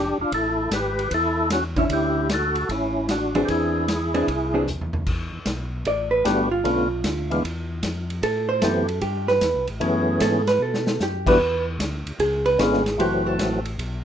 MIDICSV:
0, 0, Header, 1, 5, 480
1, 0, Start_track
1, 0, Tempo, 396040
1, 387, Time_signature, 4, 2, 24, 8
1, 17016, End_track
2, 0, Start_track
2, 0, Title_t, "Hollow-body jazz guitar"
2, 0, Program_c, 0, 26
2, 2139, Note_on_c, 0, 50, 65
2, 2155, Note_on_c, 0, 61, 68
2, 2160, Note_on_c, 0, 64, 68
2, 2749, Note_off_c, 0, 50, 0
2, 2756, Note_off_c, 0, 61, 0
2, 2759, Note_off_c, 0, 64, 0
2, 4063, Note_on_c, 0, 52, 65
2, 4064, Note_on_c, 0, 60, 70
2, 4066, Note_on_c, 0, 62, 69
2, 4072, Note_on_c, 0, 68, 80
2, 4669, Note_off_c, 0, 52, 0
2, 4669, Note_off_c, 0, 60, 0
2, 4671, Note_off_c, 0, 62, 0
2, 4673, Note_off_c, 0, 68, 0
2, 5022, Note_on_c, 0, 60, 64
2, 5024, Note_on_c, 0, 52, 56
2, 5028, Note_on_c, 0, 62, 67
2, 5030, Note_on_c, 0, 68, 66
2, 5165, Note_off_c, 0, 60, 0
2, 5166, Note_off_c, 0, 52, 0
2, 5168, Note_off_c, 0, 62, 0
2, 5169, Note_off_c, 0, 68, 0
2, 5500, Note_on_c, 0, 52, 53
2, 5506, Note_on_c, 0, 60, 59
2, 5511, Note_on_c, 0, 62, 59
2, 5515, Note_on_c, 0, 68, 63
2, 5643, Note_off_c, 0, 52, 0
2, 5647, Note_off_c, 0, 60, 0
2, 5649, Note_off_c, 0, 62, 0
2, 5651, Note_off_c, 0, 68, 0
2, 7120, Note_on_c, 0, 74, 66
2, 7400, Note_off_c, 0, 74, 0
2, 7405, Note_on_c, 0, 71, 76
2, 7566, Note_off_c, 0, 71, 0
2, 7588, Note_on_c, 0, 67, 68
2, 7893, Note_off_c, 0, 67, 0
2, 7895, Note_on_c, 0, 65, 78
2, 8968, Note_off_c, 0, 65, 0
2, 9980, Note_on_c, 0, 69, 74
2, 10286, Note_on_c, 0, 72, 95
2, 10289, Note_off_c, 0, 69, 0
2, 10444, Note_on_c, 0, 69, 64
2, 10447, Note_off_c, 0, 72, 0
2, 10897, Note_off_c, 0, 69, 0
2, 10930, Note_on_c, 0, 67, 64
2, 11244, Note_off_c, 0, 67, 0
2, 11251, Note_on_c, 0, 71, 93
2, 11701, Note_off_c, 0, 71, 0
2, 12383, Note_on_c, 0, 69, 76
2, 12691, Note_off_c, 0, 69, 0
2, 12699, Note_on_c, 0, 71, 89
2, 12855, Note_off_c, 0, 71, 0
2, 12876, Note_on_c, 0, 69, 63
2, 13315, Note_off_c, 0, 69, 0
2, 13366, Note_on_c, 0, 67, 67
2, 13663, Note_off_c, 0, 67, 0
2, 13674, Note_on_c, 0, 71, 96
2, 14114, Note_off_c, 0, 71, 0
2, 14788, Note_on_c, 0, 68, 63
2, 15095, Note_off_c, 0, 68, 0
2, 15098, Note_on_c, 0, 71, 90
2, 15256, Note_off_c, 0, 71, 0
2, 15289, Note_on_c, 0, 68, 71
2, 15724, Note_off_c, 0, 68, 0
2, 15768, Note_on_c, 0, 67, 79
2, 16075, Note_off_c, 0, 67, 0
2, 16075, Note_on_c, 0, 69, 80
2, 16550, Note_off_c, 0, 69, 0
2, 17016, End_track
3, 0, Start_track
3, 0, Title_t, "Tonewheel organ"
3, 0, Program_c, 1, 16
3, 0, Note_on_c, 1, 62, 68
3, 0, Note_on_c, 1, 67, 86
3, 219, Note_off_c, 1, 62, 0
3, 219, Note_off_c, 1, 67, 0
3, 257, Note_on_c, 1, 62, 65
3, 262, Note_on_c, 1, 65, 81
3, 392, Note_off_c, 1, 62, 0
3, 395, Note_off_c, 1, 65, 0
3, 412, Note_on_c, 1, 64, 72
3, 418, Note_on_c, 1, 69, 101
3, 846, Note_off_c, 1, 64, 0
3, 887, Note_on_c, 1, 67, 79
3, 891, Note_on_c, 1, 71, 98
3, 896, Note_off_c, 1, 69, 0
3, 1323, Note_off_c, 1, 67, 0
3, 1372, Note_off_c, 1, 71, 0
3, 1384, Note_on_c, 1, 64, 77
3, 1387, Note_on_c, 1, 69, 95
3, 1812, Note_off_c, 1, 64, 0
3, 1813, Note_off_c, 1, 69, 0
3, 1848, Note_on_c, 1, 66, 82
3, 1852, Note_on_c, 1, 61, 65
3, 1986, Note_off_c, 1, 66, 0
3, 1989, Note_off_c, 1, 61, 0
3, 2168, Note_on_c, 1, 64, 77
3, 2170, Note_on_c, 1, 61, 68
3, 2234, Note_off_c, 1, 64, 0
3, 2236, Note_off_c, 1, 61, 0
3, 2335, Note_on_c, 1, 64, 68
3, 2338, Note_on_c, 1, 67, 88
3, 2766, Note_off_c, 1, 64, 0
3, 2814, Note_off_c, 1, 67, 0
3, 2832, Note_on_c, 1, 69, 91
3, 2839, Note_on_c, 1, 66, 71
3, 3258, Note_off_c, 1, 66, 0
3, 3285, Note_on_c, 1, 64, 76
3, 3298, Note_on_c, 1, 61, 61
3, 3300, Note_off_c, 1, 69, 0
3, 3727, Note_off_c, 1, 61, 0
3, 3766, Note_off_c, 1, 64, 0
3, 3767, Note_on_c, 1, 66, 80
3, 3771, Note_on_c, 1, 62, 64
3, 4148, Note_off_c, 1, 66, 0
3, 4150, Note_off_c, 1, 62, 0
3, 4180, Note_on_c, 1, 67, 60
3, 4228, Note_off_c, 1, 67, 0
3, 4244, Note_on_c, 1, 68, 81
3, 4252, Note_on_c, 1, 64, 61
3, 5622, Note_off_c, 1, 68, 0
3, 5626, Note_off_c, 1, 64, 0
3, 7571, Note_on_c, 1, 55, 57
3, 7573, Note_on_c, 1, 57, 48
3, 7577, Note_on_c, 1, 59, 51
3, 7586, Note_on_c, 1, 62, 46
3, 7587, Note_on_c, 1, 66, 61
3, 7862, Note_off_c, 1, 55, 0
3, 7863, Note_off_c, 1, 57, 0
3, 7865, Note_off_c, 1, 59, 0
3, 7870, Note_off_c, 1, 62, 0
3, 7870, Note_off_c, 1, 66, 0
3, 8048, Note_on_c, 1, 50, 60
3, 8048, Note_on_c, 1, 57, 51
3, 8057, Note_on_c, 1, 59, 53
3, 8063, Note_on_c, 1, 61, 55
3, 8066, Note_on_c, 1, 65, 61
3, 8340, Note_off_c, 1, 50, 0
3, 8340, Note_off_c, 1, 57, 0
3, 8345, Note_off_c, 1, 59, 0
3, 8348, Note_off_c, 1, 61, 0
3, 8350, Note_off_c, 1, 65, 0
3, 8853, Note_on_c, 1, 52, 55
3, 8863, Note_on_c, 1, 56, 54
3, 8863, Note_on_c, 1, 59, 54
3, 8870, Note_on_c, 1, 62, 58
3, 8871, Note_on_c, 1, 65, 65
3, 9000, Note_off_c, 1, 52, 0
3, 9004, Note_off_c, 1, 59, 0
3, 9005, Note_off_c, 1, 56, 0
3, 9008, Note_off_c, 1, 62, 0
3, 9009, Note_off_c, 1, 65, 0
3, 10451, Note_on_c, 1, 57, 53
3, 10452, Note_on_c, 1, 52, 60
3, 10461, Note_on_c, 1, 59, 51
3, 10465, Note_on_c, 1, 60, 52
3, 10470, Note_on_c, 1, 67, 63
3, 10742, Note_off_c, 1, 57, 0
3, 10743, Note_off_c, 1, 52, 0
3, 10747, Note_off_c, 1, 59, 0
3, 10749, Note_off_c, 1, 60, 0
3, 10751, Note_off_c, 1, 67, 0
3, 11879, Note_on_c, 1, 52, 63
3, 11885, Note_on_c, 1, 57, 59
3, 11887, Note_on_c, 1, 59, 63
3, 11892, Note_on_c, 1, 61, 63
3, 11896, Note_on_c, 1, 68, 76
3, 12625, Note_off_c, 1, 52, 0
3, 12628, Note_off_c, 1, 57, 0
3, 12629, Note_off_c, 1, 59, 0
3, 12631, Note_off_c, 1, 61, 0
3, 12633, Note_off_c, 1, 68, 0
3, 13652, Note_on_c, 1, 52, 74
3, 13652, Note_on_c, 1, 55, 74
3, 13658, Note_on_c, 1, 59, 75
3, 13661, Note_on_c, 1, 62, 73
3, 13668, Note_on_c, 1, 66, 83
3, 13800, Note_off_c, 1, 52, 0
3, 13801, Note_off_c, 1, 55, 0
3, 13803, Note_off_c, 1, 59, 0
3, 13805, Note_off_c, 1, 62, 0
3, 13809, Note_off_c, 1, 66, 0
3, 15253, Note_on_c, 1, 50, 60
3, 15258, Note_on_c, 1, 56, 59
3, 15270, Note_on_c, 1, 59, 55
3, 15270, Note_on_c, 1, 61, 53
3, 15275, Note_on_c, 1, 65, 66
3, 15546, Note_off_c, 1, 50, 0
3, 15548, Note_off_c, 1, 56, 0
3, 15554, Note_off_c, 1, 59, 0
3, 15554, Note_off_c, 1, 61, 0
3, 15557, Note_off_c, 1, 65, 0
3, 15730, Note_on_c, 1, 52, 60
3, 15739, Note_on_c, 1, 54, 59
3, 15739, Note_on_c, 1, 57, 54
3, 15746, Note_on_c, 1, 60, 55
3, 15754, Note_on_c, 1, 66, 65
3, 16473, Note_off_c, 1, 52, 0
3, 16478, Note_off_c, 1, 54, 0
3, 16478, Note_off_c, 1, 57, 0
3, 16481, Note_off_c, 1, 60, 0
3, 16485, Note_off_c, 1, 66, 0
3, 17016, End_track
4, 0, Start_track
4, 0, Title_t, "Tonewheel organ"
4, 0, Program_c, 2, 16
4, 0, Note_on_c, 2, 29, 78
4, 178, Note_off_c, 2, 29, 0
4, 218, Note_on_c, 2, 29, 36
4, 300, Note_off_c, 2, 29, 0
4, 381, Note_on_c, 2, 33, 77
4, 829, Note_off_c, 2, 33, 0
4, 857, Note_on_c, 2, 32, 74
4, 1307, Note_off_c, 2, 32, 0
4, 1342, Note_on_c, 2, 40, 74
4, 2254, Note_off_c, 2, 40, 0
4, 2294, Note_on_c, 2, 38, 78
4, 3209, Note_off_c, 2, 38, 0
4, 3257, Note_on_c, 2, 33, 71
4, 4170, Note_off_c, 2, 33, 0
4, 4226, Note_on_c, 2, 40, 74
4, 5134, Note_off_c, 2, 40, 0
4, 5177, Note_on_c, 2, 36, 75
4, 5772, Note_off_c, 2, 36, 0
4, 5821, Note_on_c, 2, 40, 57
4, 5967, Note_on_c, 2, 38, 68
4, 5969, Note_off_c, 2, 40, 0
4, 6121, Note_off_c, 2, 38, 0
4, 6137, Note_on_c, 2, 40, 70
4, 6435, Note_off_c, 2, 40, 0
4, 6452, Note_on_c, 2, 40, 34
4, 6534, Note_off_c, 2, 40, 0
4, 6613, Note_on_c, 2, 35, 75
4, 7081, Note_off_c, 2, 35, 0
4, 7087, Note_on_c, 2, 33, 74
4, 7558, Note_off_c, 2, 33, 0
4, 7574, Note_on_c, 2, 31, 73
4, 8041, Note_off_c, 2, 31, 0
4, 8051, Note_on_c, 2, 35, 69
4, 8520, Note_off_c, 2, 35, 0
4, 8528, Note_on_c, 2, 38, 84
4, 8998, Note_off_c, 2, 38, 0
4, 9015, Note_on_c, 2, 40, 65
4, 9482, Note_off_c, 2, 40, 0
4, 9485, Note_on_c, 2, 41, 78
4, 9957, Note_off_c, 2, 41, 0
4, 9969, Note_on_c, 2, 45, 76
4, 10439, Note_off_c, 2, 45, 0
4, 10443, Note_on_c, 2, 42, 75
4, 10916, Note_off_c, 2, 42, 0
4, 10925, Note_on_c, 2, 43, 75
4, 11397, Note_off_c, 2, 43, 0
4, 11406, Note_on_c, 2, 40, 85
4, 11567, Note_off_c, 2, 40, 0
4, 11577, Note_on_c, 2, 36, 50
4, 11738, Note_off_c, 2, 36, 0
4, 11740, Note_on_c, 2, 33, 64
4, 11882, Note_on_c, 2, 42, 81
4, 11888, Note_off_c, 2, 33, 0
4, 12356, Note_off_c, 2, 42, 0
4, 12366, Note_on_c, 2, 44, 83
4, 12838, Note_off_c, 2, 44, 0
4, 12845, Note_on_c, 2, 47, 68
4, 13318, Note_off_c, 2, 47, 0
4, 13331, Note_on_c, 2, 42, 72
4, 13801, Note_off_c, 2, 42, 0
4, 13812, Note_on_c, 2, 40, 77
4, 14282, Note_off_c, 2, 40, 0
4, 14286, Note_on_c, 2, 38, 83
4, 14590, Note_off_c, 2, 38, 0
4, 14613, Note_on_c, 2, 38, 38
4, 14695, Note_off_c, 2, 38, 0
4, 14768, Note_on_c, 2, 37, 70
4, 15241, Note_off_c, 2, 37, 0
4, 15257, Note_on_c, 2, 32, 84
4, 15726, Note_off_c, 2, 32, 0
4, 15734, Note_on_c, 2, 30, 74
4, 16205, Note_off_c, 2, 30, 0
4, 16225, Note_on_c, 2, 33, 86
4, 16691, Note_off_c, 2, 33, 0
4, 16702, Note_on_c, 2, 35, 76
4, 17016, Note_off_c, 2, 35, 0
4, 17016, End_track
5, 0, Start_track
5, 0, Title_t, "Drums"
5, 389, Note_on_c, 9, 36, 33
5, 391, Note_on_c, 9, 51, 52
5, 511, Note_off_c, 9, 36, 0
5, 512, Note_off_c, 9, 51, 0
5, 865, Note_on_c, 9, 38, 63
5, 865, Note_on_c, 9, 44, 59
5, 865, Note_on_c, 9, 51, 67
5, 987, Note_off_c, 9, 38, 0
5, 987, Note_off_c, 9, 44, 0
5, 987, Note_off_c, 9, 51, 0
5, 1197, Note_on_c, 9, 51, 43
5, 1318, Note_off_c, 9, 51, 0
5, 1344, Note_on_c, 9, 36, 34
5, 1346, Note_on_c, 9, 51, 56
5, 1465, Note_off_c, 9, 36, 0
5, 1468, Note_off_c, 9, 51, 0
5, 1822, Note_on_c, 9, 38, 66
5, 1822, Note_on_c, 9, 44, 63
5, 1822, Note_on_c, 9, 51, 65
5, 1943, Note_off_c, 9, 38, 0
5, 1943, Note_off_c, 9, 44, 0
5, 1943, Note_off_c, 9, 51, 0
5, 2137, Note_on_c, 9, 51, 45
5, 2138, Note_on_c, 9, 36, 56
5, 2258, Note_off_c, 9, 51, 0
5, 2259, Note_off_c, 9, 36, 0
5, 2298, Note_on_c, 9, 51, 61
5, 2299, Note_on_c, 9, 36, 29
5, 2419, Note_off_c, 9, 51, 0
5, 2420, Note_off_c, 9, 36, 0
5, 2781, Note_on_c, 9, 38, 70
5, 2781, Note_on_c, 9, 44, 56
5, 2781, Note_on_c, 9, 51, 62
5, 2902, Note_off_c, 9, 38, 0
5, 2902, Note_off_c, 9, 44, 0
5, 2902, Note_off_c, 9, 51, 0
5, 3095, Note_on_c, 9, 51, 44
5, 3217, Note_off_c, 9, 51, 0
5, 3261, Note_on_c, 9, 36, 31
5, 3265, Note_on_c, 9, 51, 56
5, 3382, Note_off_c, 9, 36, 0
5, 3387, Note_off_c, 9, 51, 0
5, 3741, Note_on_c, 9, 38, 59
5, 3741, Note_on_c, 9, 44, 49
5, 3741, Note_on_c, 9, 51, 63
5, 3862, Note_off_c, 9, 38, 0
5, 3862, Note_off_c, 9, 44, 0
5, 3862, Note_off_c, 9, 51, 0
5, 4058, Note_on_c, 9, 51, 48
5, 4180, Note_off_c, 9, 51, 0
5, 4222, Note_on_c, 9, 51, 57
5, 4225, Note_on_c, 9, 36, 31
5, 4343, Note_off_c, 9, 51, 0
5, 4346, Note_off_c, 9, 36, 0
5, 4706, Note_on_c, 9, 38, 67
5, 4706, Note_on_c, 9, 44, 61
5, 4706, Note_on_c, 9, 51, 62
5, 4827, Note_off_c, 9, 38, 0
5, 4827, Note_off_c, 9, 44, 0
5, 4827, Note_off_c, 9, 51, 0
5, 5023, Note_on_c, 9, 51, 46
5, 5144, Note_off_c, 9, 51, 0
5, 5188, Note_on_c, 9, 36, 31
5, 5190, Note_on_c, 9, 51, 56
5, 5309, Note_off_c, 9, 36, 0
5, 5311, Note_off_c, 9, 51, 0
5, 5667, Note_on_c, 9, 43, 43
5, 5667, Note_on_c, 9, 44, 63
5, 5789, Note_off_c, 9, 43, 0
5, 5789, Note_off_c, 9, 44, 0
5, 5834, Note_on_c, 9, 43, 58
5, 5955, Note_off_c, 9, 43, 0
5, 5978, Note_on_c, 9, 43, 84
5, 6099, Note_off_c, 9, 43, 0
5, 6139, Note_on_c, 9, 49, 65
5, 6140, Note_on_c, 9, 36, 59
5, 6260, Note_off_c, 9, 49, 0
5, 6261, Note_off_c, 9, 36, 0
5, 6613, Note_on_c, 9, 38, 67
5, 6613, Note_on_c, 9, 44, 51
5, 6613, Note_on_c, 9, 51, 56
5, 6617, Note_on_c, 9, 36, 19
5, 6734, Note_off_c, 9, 38, 0
5, 6734, Note_off_c, 9, 44, 0
5, 6734, Note_off_c, 9, 51, 0
5, 6738, Note_off_c, 9, 36, 0
5, 7093, Note_on_c, 9, 51, 53
5, 7094, Note_on_c, 9, 36, 23
5, 7214, Note_off_c, 9, 51, 0
5, 7215, Note_off_c, 9, 36, 0
5, 7575, Note_on_c, 9, 36, 20
5, 7578, Note_on_c, 9, 38, 65
5, 7578, Note_on_c, 9, 44, 48
5, 7578, Note_on_c, 9, 51, 61
5, 7696, Note_off_c, 9, 36, 0
5, 7699, Note_off_c, 9, 38, 0
5, 7699, Note_off_c, 9, 44, 0
5, 7699, Note_off_c, 9, 51, 0
5, 8055, Note_on_c, 9, 36, 16
5, 8060, Note_on_c, 9, 51, 51
5, 8177, Note_off_c, 9, 36, 0
5, 8181, Note_off_c, 9, 51, 0
5, 8532, Note_on_c, 9, 36, 19
5, 8532, Note_on_c, 9, 38, 67
5, 8532, Note_on_c, 9, 44, 49
5, 8532, Note_on_c, 9, 51, 68
5, 8653, Note_off_c, 9, 38, 0
5, 8653, Note_off_c, 9, 44, 0
5, 8653, Note_off_c, 9, 51, 0
5, 8654, Note_off_c, 9, 36, 0
5, 8862, Note_on_c, 9, 51, 41
5, 8984, Note_off_c, 9, 51, 0
5, 9016, Note_on_c, 9, 36, 17
5, 9028, Note_on_c, 9, 51, 52
5, 9137, Note_off_c, 9, 36, 0
5, 9149, Note_off_c, 9, 51, 0
5, 9487, Note_on_c, 9, 38, 59
5, 9487, Note_on_c, 9, 44, 60
5, 9487, Note_on_c, 9, 51, 63
5, 9491, Note_on_c, 9, 36, 22
5, 9608, Note_off_c, 9, 38, 0
5, 9608, Note_off_c, 9, 44, 0
5, 9608, Note_off_c, 9, 51, 0
5, 9612, Note_off_c, 9, 36, 0
5, 9818, Note_on_c, 9, 51, 45
5, 9940, Note_off_c, 9, 51, 0
5, 9971, Note_on_c, 9, 36, 22
5, 9974, Note_on_c, 9, 51, 53
5, 10093, Note_off_c, 9, 36, 0
5, 10095, Note_off_c, 9, 51, 0
5, 10444, Note_on_c, 9, 38, 70
5, 10444, Note_on_c, 9, 44, 52
5, 10444, Note_on_c, 9, 51, 65
5, 10447, Note_on_c, 9, 36, 18
5, 10565, Note_off_c, 9, 38, 0
5, 10565, Note_off_c, 9, 44, 0
5, 10565, Note_off_c, 9, 51, 0
5, 10569, Note_off_c, 9, 36, 0
5, 10768, Note_on_c, 9, 51, 45
5, 10890, Note_off_c, 9, 51, 0
5, 10925, Note_on_c, 9, 51, 47
5, 10928, Note_on_c, 9, 36, 24
5, 11046, Note_off_c, 9, 51, 0
5, 11049, Note_off_c, 9, 36, 0
5, 11244, Note_on_c, 9, 38, 36
5, 11365, Note_off_c, 9, 38, 0
5, 11407, Note_on_c, 9, 38, 59
5, 11407, Note_on_c, 9, 44, 56
5, 11407, Note_on_c, 9, 51, 60
5, 11408, Note_on_c, 9, 36, 17
5, 11529, Note_off_c, 9, 38, 0
5, 11529, Note_off_c, 9, 44, 0
5, 11529, Note_off_c, 9, 51, 0
5, 11530, Note_off_c, 9, 36, 0
5, 11725, Note_on_c, 9, 51, 43
5, 11847, Note_off_c, 9, 51, 0
5, 11888, Note_on_c, 9, 51, 56
5, 11889, Note_on_c, 9, 36, 20
5, 12010, Note_off_c, 9, 36, 0
5, 12010, Note_off_c, 9, 51, 0
5, 12367, Note_on_c, 9, 38, 63
5, 12367, Note_on_c, 9, 44, 67
5, 12367, Note_on_c, 9, 51, 67
5, 12371, Note_on_c, 9, 36, 22
5, 12488, Note_off_c, 9, 38, 0
5, 12488, Note_off_c, 9, 44, 0
5, 12488, Note_off_c, 9, 51, 0
5, 12492, Note_off_c, 9, 36, 0
5, 12694, Note_on_c, 9, 38, 48
5, 12694, Note_on_c, 9, 51, 43
5, 12815, Note_off_c, 9, 38, 0
5, 12815, Note_off_c, 9, 51, 0
5, 13015, Note_on_c, 9, 38, 56
5, 13136, Note_off_c, 9, 38, 0
5, 13172, Note_on_c, 9, 38, 79
5, 13293, Note_off_c, 9, 38, 0
5, 13336, Note_on_c, 9, 38, 53
5, 13336, Note_on_c, 9, 44, 57
5, 13457, Note_off_c, 9, 38, 0
5, 13457, Note_off_c, 9, 44, 0
5, 13653, Note_on_c, 9, 36, 73
5, 13658, Note_on_c, 9, 49, 76
5, 13774, Note_off_c, 9, 36, 0
5, 13779, Note_off_c, 9, 49, 0
5, 14297, Note_on_c, 9, 36, 21
5, 14300, Note_on_c, 9, 38, 60
5, 14300, Note_on_c, 9, 44, 65
5, 14300, Note_on_c, 9, 51, 67
5, 14419, Note_off_c, 9, 36, 0
5, 14422, Note_off_c, 9, 38, 0
5, 14422, Note_off_c, 9, 44, 0
5, 14422, Note_off_c, 9, 51, 0
5, 14625, Note_on_c, 9, 51, 45
5, 14747, Note_off_c, 9, 51, 0
5, 14776, Note_on_c, 9, 36, 22
5, 14781, Note_on_c, 9, 51, 57
5, 14897, Note_off_c, 9, 36, 0
5, 14903, Note_off_c, 9, 51, 0
5, 15096, Note_on_c, 9, 51, 46
5, 15217, Note_off_c, 9, 51, 0
5, 15262, Note_on_c, 9, 36, 23
5, 15262, Note_on_c, 9, 38, 71
5, 15262, Note_on_c, 9, 44, 57
5, 15262, Note_on_c, 9, 51, 62
5, 15383, Note_off_c, 9, 36, 0
5, 15383, Note_off_c, 9, 38, 0
5, 15383, Note_off_c, 9, 44, 0
5, 15383, Note_off_c, 9, 51, 0
5, 15431, Note_on_c, 9, 38, 29
5, 15553, Note_off_c, 9, 38, 0
5, 15585, Note_on_c, 9, 38, 45
5, 15588, Note_on_c, 9, 51, 44
5, 15707, Note_off_c, 9, 38, 0
5, 15709, Note_off_c, 9, 51, 0
5, 15745, Note_on_c, 9, 36, 24
5, 15752, Note_on_c, 9, 51, 57
5, 15867, Note_off_c, 9, 36, 0
5, 15873, Note_off_c, 9, 51, 0
5, 16226, Note_on_c, 9, 36, 22
5, 16231, Note_on_c, 9, 38, 64
5, 16231, Note_on_c, 9, 44, 55
5, 16231, Note_on_c, 9, 51, 63
5, 16348, Note_off_c, 9, 36, 0
5, 16353, Note_off_c, 9, 38, 0
5, 16353, Note_off_c, 9, 44, 0
5, 16353, Note_off_c, 9, 51, 0
5, 16549, Note_on_c, 9, 51, 46
5, 16670, Note_off_c, 9, 51, 0
5, 16709, Note_on_c, 9, 36, 23
5, 16715, Note_on_c, 9, 51, 57
5, 16830, Note_off_c, 9, 36, 0
5, 16837, Note_off_c, 9, 51, 0
5, 17016, End_track
0, 0, End_of_file